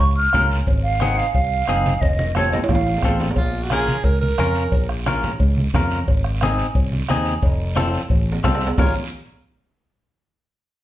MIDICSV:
0, 0, Header, 1, 7, 480
1, 0, Start_track
1, 0, Key_signature, -5, "minor"
1, 0, Tempo, 337838
1, 958, Time_signature, 4, 2, 24, 8
1, 15397, End_track
2, 0, Start_track
2, 0, Title_t, "Flute"
2, 0, Program_c, 0, 73
2, 2, Note_on_c, 0, 85, 93
2, 240, Note_off_c, 0, 85, 0
2, 246, Note_on_c, 0, 89, 91
2, 689, Note_off_c, 0, 89, 0
2, 1185, Note_on_c, 0, 77, 96
2, 1450, Note_on_c, 0, 78, 107
2, 1471, Note_off_c, 0, 77, 0
2, 1671, Note_on_c, 0, 77, 108
2, 1692, Note_off_c, 0, 78, 0
2, 1897, Note_off_c, 0, 77, 0
2, 1905, Note_on_c, 0, 77, 94
2, 2857, Note_on_c, 0, 75, 85
2, 2878, Note_off_c, 0, 77, 0
2, 3347, Note_off_c, 0, 75, 0
2, 3360, Note_on_c, 0, 73, 89
2, 3575, Note_off_c, 0, 73, 0
2, 3584, Note_on_c, 0, 75, 86
2, 3669, Note_off_c, 0, 75, 0
2, 3835, Note_on_c, 0, 77, 81
2, 4505, Note_off_c, 0, 77, 0
2, 15397, End_track
3, 0, Start_track
3, 0, Title_t, "Tenor saxophone"
3, 0, Program_c, 1, 66
3, 4787, Note_on_c, 1, 65, 83
3, 5155, Note_on_c, 1, 66, 78
3, 5177, Note_off_c, 1, 65, 0
3, 5276, Note_off_c, 1, 66, 0
3, 5287, Note_on_c, 1, 68, 101
3, 5745, Note_on_c, 1, 70, 96
3, 5767, Note_off_c, 1, 68, 0
3, 5971, Note_off_c, 1, 70, 0
3, 5980, Note_on_c, 1, 70, 101
3, 6891, Note_off_c, 1, 70, 0
3, 12492, Note_on_c, 1, 73, 75
3, 12708, Note_off_c, 1, 73, 0
3, 15397, End_track
4, 0, Start_track
4, 0, Title_t, "Clean electric guitar"
4, 0, Program_c, 2, 27
4, 484, Note_on_c, 2, 61, 74
4, 489, Note_on_c, 2, 65, 66
4, 495, Note_on_c, 2, 70, 79
4, 817, Note_off_c, 2, 61, 0
4, 820, Note_off_c, 2, 65, 0
4, 823, Note_off_c, 2, 70, 0
4, 1434, Note_on_c, 2, 60, 72
4, 1444, Note_on_c, 2, 63, 67
4, 1451, Note_on_c, 2, 68, 74
4, 1772, Note_off_c, 2, 60, 0
4, 1777, Note_off_c, 2, 63, 0
4, 1780, Note_off_c, 2, 68, 0
4, 2394, Note_on_c, 2, 60, 81
4, 2399, Note_on_c, 2, 63, 59
4, 2404, Note_on_c, 2, 68, 81
4, 2732, Note_off_c, 2, 60, 0
4, 2732, Note_off_c, 2, 63, 0
4, 2736, Note_off_c, 2, 68, 0
4, 3355, Note_on_c, 2, 60, 73
4, 3364, Note_on_c, 2, 69, 84
4, 3368, Note_on_c, 2, 65, 47
4, 3693, Note_off_c, 2, 60, 0
4, 3696, Note_off_c, 2, 65, 0
4, 3696, Note_off_c, 2, 69, 0
4, 4322, Note_on_c, 2, 60, 72
4, 4331, Note_on_c, 2, 65, 60
4, 4337, Note_on_c, 2, 69, 64
4, 4657, Note_off_c, 2, 60, 0
4, 4658, Note_off_c, 2, 69, 0
4, 4659, Note_off_c, 2, 65, 0
4, 5283, Note_on_c, 2, 61, 84
4, 5286, Note_on_c, 2, 65, 74
4, 5297, Note_on_c, 2, 70, 79
4, 5616, Note_off_c, 2, 61, 0
4, 5619, Note_off_c, 2, 65, 0
4, 5620, Note_off_c, 2, 70, 0
4, 6234, Note_on_c, 2, 61, 94
4, 6241, Note_on_c, 2, 65, 69
4, 6249, Note_on_c, 2, 70, 95
4, 6572, Note_off_c, 2, 61, 0
4, 6573, Note_off_c, 2, 65, 0
4, 6579, Note_off_c, 2, 70, 0
4, 7194, Note_on_c, 2, 61, 82
4, 7202, Note_on_c, 2, 65, 66
4, 7213, Note_on_c, 2, 70, 98
4, 7532, Note_off_c, 2, 61, 0
4, 7534, Note_off_c, 2, 65, 0
4, 7540, Note_off_c, 2, 70, 0
4, 8172, Note_on_c, 2, 61, 79
4, 8174, Note_on_c, 2, 65, 68
4, 8182, Note_on_c, 2, 70, 100
4, 8499, Note_off_c, 2, 65, 0
4, 8501, Note_off_c, 2, 61, 0
4, 8505, Note_off_c, 2, 70, 0
4, 9128, Note_on_c, 2, 60, 84
4, 9138, Note_on_c, 2, 63, 82
4, 9139, Note_on_c, 2, 68, 91
4, 9460, Note_off_c, 2, 60, 0
4, 9460, Note_off_c, 2, 63, 0
4, 9464, Note_off_c, 2, 68, 0
4, 10078, Note_on_c, 2, 60, 88
4, 10088, Note_on_c, 2, 63, 77
4, 10097, Note_on_c, 2, 68, 88
4, 10413, Note_off_c, 2, 60, 0
4, 10419, Note_off_c, 2, 63, 0
4, 10421, Note_off_c, 2, 68, 0
4, 11027, Note_on_c, 2, 60, 92
4, 11033, Note_on_c, 2, 65, 74
4, 11038, Note_on_c, 2, 69, 103
4, 11369, Note_off_c, 2, 60, 0
4, 11369, Note_off_c, 2, 65, 0
4, 11373, Note_off_c, 2, 69, 0
4, 11992, Note_on_c, 2, 60, 93
4, 11996, Note_on_c, 2, 65, 77
4, 12004, Note_on_c, 2, 69, 93
4, 12331, Note_off_c, 2, 60, 0
4, 12333, Note_off_c, 2, 65, 0
4, 12335, Note_off_c, 2, 69, 0
4, 12480, Note_on_c, 2, 61, 65
4, 12484, Note_on_c, 2, 65, 65
4, 12493, Note_on_c, 2, 70, 76
4, 12703, Note_off_c, 2, 65, 0
4, 12704, Note_off_c, 2, 70, 0
4, 12705, Note_off_c, 2, 61, 0
4, 15397, End_track
5, 0, Start_track
5, 0, Title_t, "Fingered electric bass"
5, 0, Program_c, 3, 33
5, 0, Note_on_c, 3, 37, 90
5, 375, Note_off_c, 3, 37, 0
5, 483, Note_on_c, 3, 37, 87
5, 865, Note_off_c, 3, 37, 0
5, 950, Note_on_c, 3, 32, 103
5, 1721, Note_off_c, 3, 32, 0
5, 1910, Note_on_c, 3, 36, 88
5, 2297, Note_off_c, 3, 36, 0
5, 2397, Note_on_c, 3, 30, 87
5, 2781, Note_off_c, 3, 30, 0
5, 2860, Note_on_c, 3, 29, 105
5, 3634, Note_off_c, 3, 29, 0
5, 3820, Note_on_c, 3, 33, 88
5, 4210, Note_off_c, 3, 33, 0
5, 4298, Note_on_c, 3, 33, 87
5, 4689, Note_off_c, 3, 33, 0
5, 4777, Note_on_c, 3, 34, 101
5, 5552, Note_off_c, 3, 34, 0
5, 5735, Note_on_c, 3, 37, 90
5, 6127, Note_off_c, 3, 37, 0
5, 6236, Note_on_c, 3, 41, 94
5, 6620, Note_off_c, 3, 41, 0
5, 6705, Note_on_c, 3, 34, 93
5, 7477, Note_off_c, 3, 34, 0
5, 7669, Note_on_c, 3, 37, 96
5, 8056, Note_off_c, 3, 37, 0
5, 8152, Note_on_c, 3, 41, 97
5, 8537, Note_off_c, 3, 41, 0
5, 8635, Note_on_c, 3, 32, 105
5, 9404, Note_off_c, 3, 32, 0
5, 9589, Note_on_c, 3, 36, 93
5, 9976, Note_off_c, 3, 36, 0
5, 10080, Note_on_c, 3, 39, 98
5, 10463, Note_off_c, 3, 39, 0
5, 10547, Note_on_c, 3, 29, 107
5, 11319, Note_off_c, 3, 29, 0
5, 11505, Note_on_c, 3, 33, 93
5, 11894, Note_off_c, 3, 33, 0
5, 11991, Note_on_c, 3, 36, 91
5, 12378, Note_off_c, 3, 36, 0
5, 12470, Note_on_c, 3, 34, 85
5, 12697, Note_off_c, 3, 34, 0
5, 15397, End_track
6, 0, Start_track
6, 0, Title_t, "Two-headed folk drums"
6, 466, Note_on_c, 9, 37, 75
6, 608, Note_off_c, 9, 37, 0
6, 950, Note_on_c, 9, 36, 83
6, 1092, Note_off_c, 9, 36, 0
6, 1421, Note_on_c, 9, 37, 84
6, 1563, Note_off_c, 9, 37, 0
6, 1909, Note_on_c, 9, 36, 74
6, 2051, Note_off_c, 9, 36, 0
6, 2380, Note_on_c, 9, 37, 71
6, 2522, Note_off_c, 9, 37, 0
6, 2863, Note_on_c, 9, 36, 75
6, 3006, Note_off_c, 9, 36, 0
6, 3337, Note_on_c, 9, 37, 83
6, 3479, Note_off_c, 9, 37, 0
6, 3820, Note_on_c, 9, 37, 67
6, 3822, Note_on_c, 9, 36, 73
6, 3962, Note_off_c, 9, 37, 0
6, 3964, Note_off_c, 9, 36, 0
6, 4298, Note_on_c, 9, 37, 76
6, 4301, Note_on_c, 9, 36, 65
6, 4440, Note_off_c, 9, 37, 0
6, 4443, Note_off_c, 9, 36, 0
6, 4779, Note_on_c, 9, 36, 75
6, 4921, Note_off_c, 9, 36, 0
6, 5258, Note_on_c, 9, 37, 88
6, 5400, Note_off_c, 9, 37, 0
6, 5740, Note_on_c, 9, 36, 72
6, 5882, Note_off_c, 9, 36, 0
6, 6225, Note_on_c, 9, 37, 81
6, 6367, Note_off_c, 9, 37, 0
6, 6704, Note_on_c, 9, 36, 76
6, 6846, Note_off_c, 9, 36, 0
6, 6951, Note_on_c, 9, 37, 68
6, 7093, Note_off_c, 9, 37, 0
6, 7196, Note_on_c, 9, 37, 86
6, 7338, Note_off_c, 9, 37, 0
6, 7671, Note_on_c, 9, 36, 73
6, 7813, Note_off_c, 9, 36, 0
6, 8152, Note_on_c, 9, 36, 68
6, 8162, Note_on_c, 9, 37, 77
6, 8294, Note_off_c, 9, 36, 0
6, 8304, Note_off_c, 9, 37, 0
6, 8631, Note_on_c, 9, 36, 80
6, 8773, Note_off_c, 9, 36, 0
6, 8871, Note_on_c, 9, 37, 71
6, 9013, Note_off_c, 9, 37, 0
6, 9109, Note_on_c, 9, 37, 88
6, 9251, Note_off_c, 9, 37, 0
6, 9590, Note_on_c, 9, 36, 81
6, 9732, Note_off_c, 9, 36, 0
6, 10066, Note_on_c, 9, 37, 82
6, 10208, Note_off_c, 9, 37, 0
6, 10550, Note_on_c, 9, 36, 78
6, 10692, Note_off_c, 9, 36, 0
6, 11032, Note_on_c, 9, 37, 82
6, 11174, Note_off_c, 9, 37, 0
6, 11508, Note_on_c, 9, 36, 79
6, 11650, Note_off_c, 9, 36, 0
6, 11991, Note_on_c, 9, 36, 68
6, 11991, Note_on_c, 9, 37, 77
6, 12133, Note_off_c, 9, 36, 0
6, 12133, Note_off_c, 9, 37, 0
6, 12472, Note_on_c, 9, 36, 95
6, 12614, Note_off_c, 9, 36, 0
6, 15397, End_track
7, 0, Start_track
7, 0, Title_t, "Drums"
7, 0, Note_on_c, 9, 56, 84
7, 6, Note_on_c, 9, 74, 68
7, 137, Note_off_c, 9, 56, 0
7, 148, Note_off_c, 9, 74, 0
7, 249, Note_on_c, 9, 63, 36
7, 391, Note_off_c, 9, 63, 0
7, 473, Note_on_c, 9, 56, 60
7, 479, Note_on_c, 9, 73, 69
7, 488, Note_on_c, 9, 63, 72
7, 488, Note_on_c, 9, 64, 75
7, 615, Note_off_c, 9, 56, 0
7, 621, Note_off_c, 9, 73, 0
7, 630, Note_off_c, 9, 63, 0
7, 630, Note_off_c, 9, 64, 0
7, 734, Note_on_c, 9, 73, 74
7, 876, Note_off_c, 9, 73, 0
7, 960, Note_on_c, 9, 56, 108
7, 964, Note_on_c, 9, 63, 33
7, 969, Note_on_c, 9, 74, 66
7, 1102, Note_off_c, 9, 56, 0
7, 1106, Note_off_c, 9, 63, 0
7, 1111, Note_off_c, 9, 74, 0
7, 1439, Note_on_c, 9, 56, 68
7, 1442, Note_on_c, 9, 73, 70
7, 1447, Note_on_c, 9, 63, 99
7, 1581, Note_off_c, 9, 56, 0
7, 1584, Note_off_c, 9, 73, 0
7, 1589, Note_off_c, 9, 63, 0
7, 1685, Note_on_c, 9, 73, 69
7, 1827, Note_off_c, 9, 73, 0
7, 1920, Note_on_c, 9, 56, 84
7, 1925, Note_on_c, 9, 74, 69
7, 2062, Note_off_c, 9, 56, 0
7, 2067, Note_off_c, 9, 74, 0
7, 2159, Note_on_c, 9, 63, 34
7, 2301, Note_off_c, 9, 63, 0
7, 2397, Note_on_c, 9, 73, 66
7, 2401, Note_on_c, 9, 56, 67
7, 2404, Note_on_c, 9, 63, 74
7, 2539, Note_off_c, 9, 73, 0
7, 2544, Note_off_c, 9, 56, 0
7, 2546, Note_off_c, 9, 63, 0
7, 2638, Note_on_c, 9, 73, 74
7, 2642, Note_on_c, 9, 63, 74
7, 2780, Note_off_c, 9, 73, 0
7, 2784, Note_off_c, 9, 63, 0
7, 2876, Note_on_c, 9, 56, 114
7, 2877, Note_on_c, 9, 74, 65
7, 2878, Note_on_c, 9, 63, 80
7, 3018, Note_off_c, 9, 56, 0
7, 3019, Note_off_c, 9, 74, 0
7, 3020, Note_off_c, 9, 63, 0
7, 3110, Note_on_c, 9, 63, 94
7, 3252, Note_off_c, 9, 63, 0
7, 3345, Note_on_c, 9, 73, 67
7, 3351, Note_on_c, 9, 56, 65
7, 3364, Note_on_c, 9, 64, 90
7, 3487, Note_off_c, 9, 73, 0
7, 3493, Note_off_c, 9, 56, 0
7, 3506, Note_off_c, 9, 64, 0
7, 3589, Note_on_c, 9, 73, 59
7, 3594, Note_on_c, 9, 65, 70
7, 3601, Note_on_c, 9, 64, 94
7, 3731, Note_off_c, 9, 73, 0
7, 3736, Note_off_c, 9, 65, 0
7, 3743, Note_off_c, 9, 64, 0
7, 3747, Note_on_c, 9, 65, 95
7, 3824, Note_on_c, 9, 56, 79
7, 3832, Note_on_c, 9, 74, 69
7, 3838, Note_on_c, 9, 64, 94
7, 3889, Note_off_c, 9, 65, 0
7, 3908, Note_on_c, 9, 65, 101
7, 3966, Note_off_c, 9, 56, 0
7, 3974, Note_off_c, 9, 74, 0
7, 3981, Note_off_c, 9, 64, 0
7, 4051, Note_off_c, 9, 65, 0
7, 4076, Note_on_c, 9, 65, 61
7, 4218, Note_off_c, 9, 65, 0
7, 4230, Note_on_c, 9, 66, 70
7, 4297, Note_on_c, 9, 73, 63
7, 4309, Note_on_c, 9, 56, 62
7, 4372, Note_off_c, 9, 66, 0
7, 4380, Note_on_c, 9, 66, 71
7, 4439, Note_off_c, 9, 73, 0
7, 4451, Note_off_c, 9, 56, 0
7, 4522, Note_off_c, 9, 66, 0
7, 4536, Note_on_c, 9, 66, 71
7, 4549, Note_on_c, 9, 73, 69
7, 4556, Note_on_c, 9, 64, 82
7, 4678, Note_off_c, 9, 66, 0
7, 4691, Note_off_c, 9, 73, 0
7, 4697, Note_on_c, 9, 66, 94
7, 4698, Note_off_c, 9, 64, 0
7, 4773, Note_on_c, 9, 56, 101
7, 4789, Note_on_c, 9, 74, 68
7, 4795, Note_on_c, 9, 63, 36
7, 4839, Note_off_c, 9, 66, 0
7, 4915, Note_off_c, 9, 56, 0
7, 4931, Note_off_c, 9, 74, 0
7, 4937, Note_off_c, 9, 63, 0
7, 5258, Note_on_c, 9, 56, 62
7, 5266, Note_on_c, 9, 73, 70
7, 5268, Note_on_c, 9, 63, 86
7, 5400, Note_off_c, 9, 56, 0
7, 5408, Note_off_c, 9, 73, 0
7, 5410, Note_off_c, 9, 63, 0
7, 5508, Note_on_c, 9, 73, 63
7, 5514, Note_on_c, 9, 63, 70
7, 5650, Note_off_c, 9, 73, 0
7, 5656, Note_off_c, 9, 63, 0
7, 5737, Note_on_c, 9, 56, 92
7, 5744, Note_on_c, 9, 74, 70
7, 5764, Note_on_c, 9, 63, 32
7, 5879, Note_off_c, 9, 56, 0
7, 5886, Note_off_c, 9, 74, 0
7, 5907, Note_off_c, 9, 63, 0
7, 6005, Note_on_c, 9, 63, 66
7, 6147, Note_off_c, 9, 63, 0
7, 6219, Note_on_c, 9, 73, 66
7, 6226, Note_on_c, 9, 56, 64
7, 6238, Note_on_c, 9, 63, 71
7, 6361, Note_off_c, 9, 73, 0
7, 6368, Note_off_c, 9, 56, 0
7, 6380, Note_off_c, 9, 63, 0
7, 6467, Note_on_c, 9, 73, 70
7, 6610, Note_off_c, 9, 73, 0
7, 6706, Note_on_c, 9, 56, 113
7, 6711, Note_on_c, 9, 74, 66
7, 6727, Note_on_c, 9, 63, 37
7, 6848, Note_off_c, 9, 56, 0
7, 6853, Note_off_c, 9, 74, 0
7, 6869, Note_off_c, 9, 63, 0
7, 7190, Note_on_c, 9, 56, 70
7, 7205, Note_on_c, 9, 73, 70
7, 7209, Note_on_c, 9, 63, 92
7, 7332, Note_off_c, 9, 56, 0
7, 7347, Note_off_c, 9, 73, 0
7, 7351, Note_off_c, 9, 63, 0
7, 7435, Note_on_c, 9, 73, 64
7, 7445, Note_on_c, 9, 64, 72
7, 7577, Note_off_c, 9, 73, 0
7, 7587, Note_off_c, 9, 64, 0
7, 7669, Note_on_c, 9, 56, 85
7, 7676, Note_on_c, 9, 74, 63
7, 7695, Note_on_c, 9, 63, 32
7, 7812, Note_off_c, 9, 56, 0
7, 7818, Note_off_c, 9, 74, 0
7, 7837, Note_off_c, 9, 63, 0
7, 7916, Note_on_c, 9, 63, 72
7, 8058, Note_off_c, 9, 63, 0
7, 8156, Note_on_c, 9, 73, 67
7, 8159, Note_on_c, 9, 63, 82
7, 8159, Note_on_c, 9, 64, 84
7, 8162, Note_on_c, 9, 56, 66
7, 8162, Note_on_c, 9, 66, 69
7, 8298, Note_off_c, 9, 73, 0
7, 8301, Note_off_c, 9, 63, 0
7, 8301, Note_off_c, 9, 64, 0
7, 8304, Note_off_c, 9, 56, 0
7, 8304, Note_off_c, 9, 66, 0
7, 8395, Note_on_c, 9, 73, 72
7, 8537, Note_off_c, 9, 73, 0
7, 8636, Note_on_c, 9, 56, 105
7, 8641, Note_on_c, 9, 74, 70
7, 8660, Note_on_c, 9, 63, 35
7, 8778, Note_off_c, 9, 56, 0
7, 8783, Note_off_c, 9, 74, 0
7, 8802, Note_off_c, 9, 63, 0
7, 9115, Note_on_c, 9, 73, 73
7, 9122, Note_on_c, 9, 56, 65
7, 9133, Note_on_c, 9, 63, 97
7, 9258, Note_off_c, 9, 73, 0
7, 9264, Note_off_c, 9, 56, 0
7, 9275, Note_off_c, 9, 63, 0
7, 9357, Note_on_c, 9, 73, 72
7, 9499, Note_off_c, 9, 73, 0
7, 9593, Note_on_c, 9, 74, 72
7, 9599, Note_on_c, 9, 56, 86
7, 9611, Note_on_c, 9, 63, 32
7, 9735, Note_off_c, 9, 74, 0
7, 9741, Note_off_c, 9, 56, 0
7, 9753, Note_off_c, 9, 63, 0
7, 9842, Note_on_c, 9, 63, 69
7, 9984, Note_off_c, 9, 63, 0
7, 10071, Note_on_c, 9, 73, 71
7, 10074, Note_on_c, 9, 56, 67
7, 10074, Note_on_c, 9, 66, 69
7, 10076, Note_on_c, 9, 63, 84
7, 10214, Note_off_c, 9, 73, 0
7, 10216, Note_off_c, 9, 56, 0
7, 10216, Note_off_c, 9, 66, 0
7, 10218, Note_off_c, 9, 63, 0
7, 10306, Note_on_c, 9, 73, 74
7, 10448, Note_off_c, 9, 73, 0
7, 10552, Note_on_c, 9, 56, 115
7, 10556, Note_on_c, 9, 74, 69
7, 10563, Note_on_c, 9, 63, 35
7, 10694, Note_off_c, 9, 56, 0
7, 10698, Note_off_c, 9, 74, 0
7, 10705, Note_off_c, 9, 63, 0
7, 11034, Note_on_c, 9, 73, 66
7, 11042, Note_on_c, 9, 56, 66
7, 11042, Note_on_c, 9, 65, 83
7, 11044, Note_on_c, 9, 63, 100
7, 11176, Note_off_c, 9, 73, 0
7, 11184, Note_off_c, 9, 56, 0
7, 11184, Note_off_c, 9, 65, 0
7, 11186, Note_off_c, 9, 63, 0
7, 11191, Note_on_c, 9, 65, 81
7, 11278, Note_on_c, 9, 73, 68
7, 11333, Note_off_c, 9, 65, 0
7, 11420, Note_off_c, 9, 73, 0
7, 11517, Note_on_c, 9, 74, 68
7, 11518, Note_on_c, 9, 56, 91
7, 11531, Note_on_c, 9, 63, 36
7, 11659, Note_off_c, 9, 74, 0
7, 11660, Note_off_c, 9, 56, 0
7, 11673, Note_off_c, 9, 63, 0
7, 11824, Note_on_c, 9, 66, 80
7, 11966, Note_off_c, 9, 66, 0
7, 11994, Note_on_c, 9, 56, 68
7, 11994, Note_on_c, 9, 66, 94
7, 11997, Note_on_c, 9, 73, 73
7, 12009, Note_on_c, 9, 63, 83
7, 12009, Note_on_c, 9, 64, 81
7, 12136, Note_off_c, 9, 56, 0
7, 12136, Note_off_c, 9, 66, 0
7, 12139, Note_off_c, 9, 73, 0
7, 12143, Note_on_c, 9, 66, 109
7, 12151, Note_off_c, 9, 63, 0
7, 12151, Note_off_c, 9, 64, 0
7, 12229, Note_on_c, 9, 73, 75
7, 12285, Note_off_c, 9, 66, 0
7, 12316, Note_on_c, 9, 66, 107
7, 12371, Note_off_c, 9, 73, 0
7, 12458, Note_off_c, 9, 66, 0
7, 12468, Note_on_c, 9, 74, 93
7, 12477, Note_on_c, 9, 66, 95
7, 12489, Note_on_c, 9, 64, 104
7, 12610, Note_off_c, 9, 74, 0
7, 12619, Note_off_c, 9, 66, 0
7, 12631, Note_off_c, 9, 64, 0
7, 15397, End_track
0, 0, End_of_file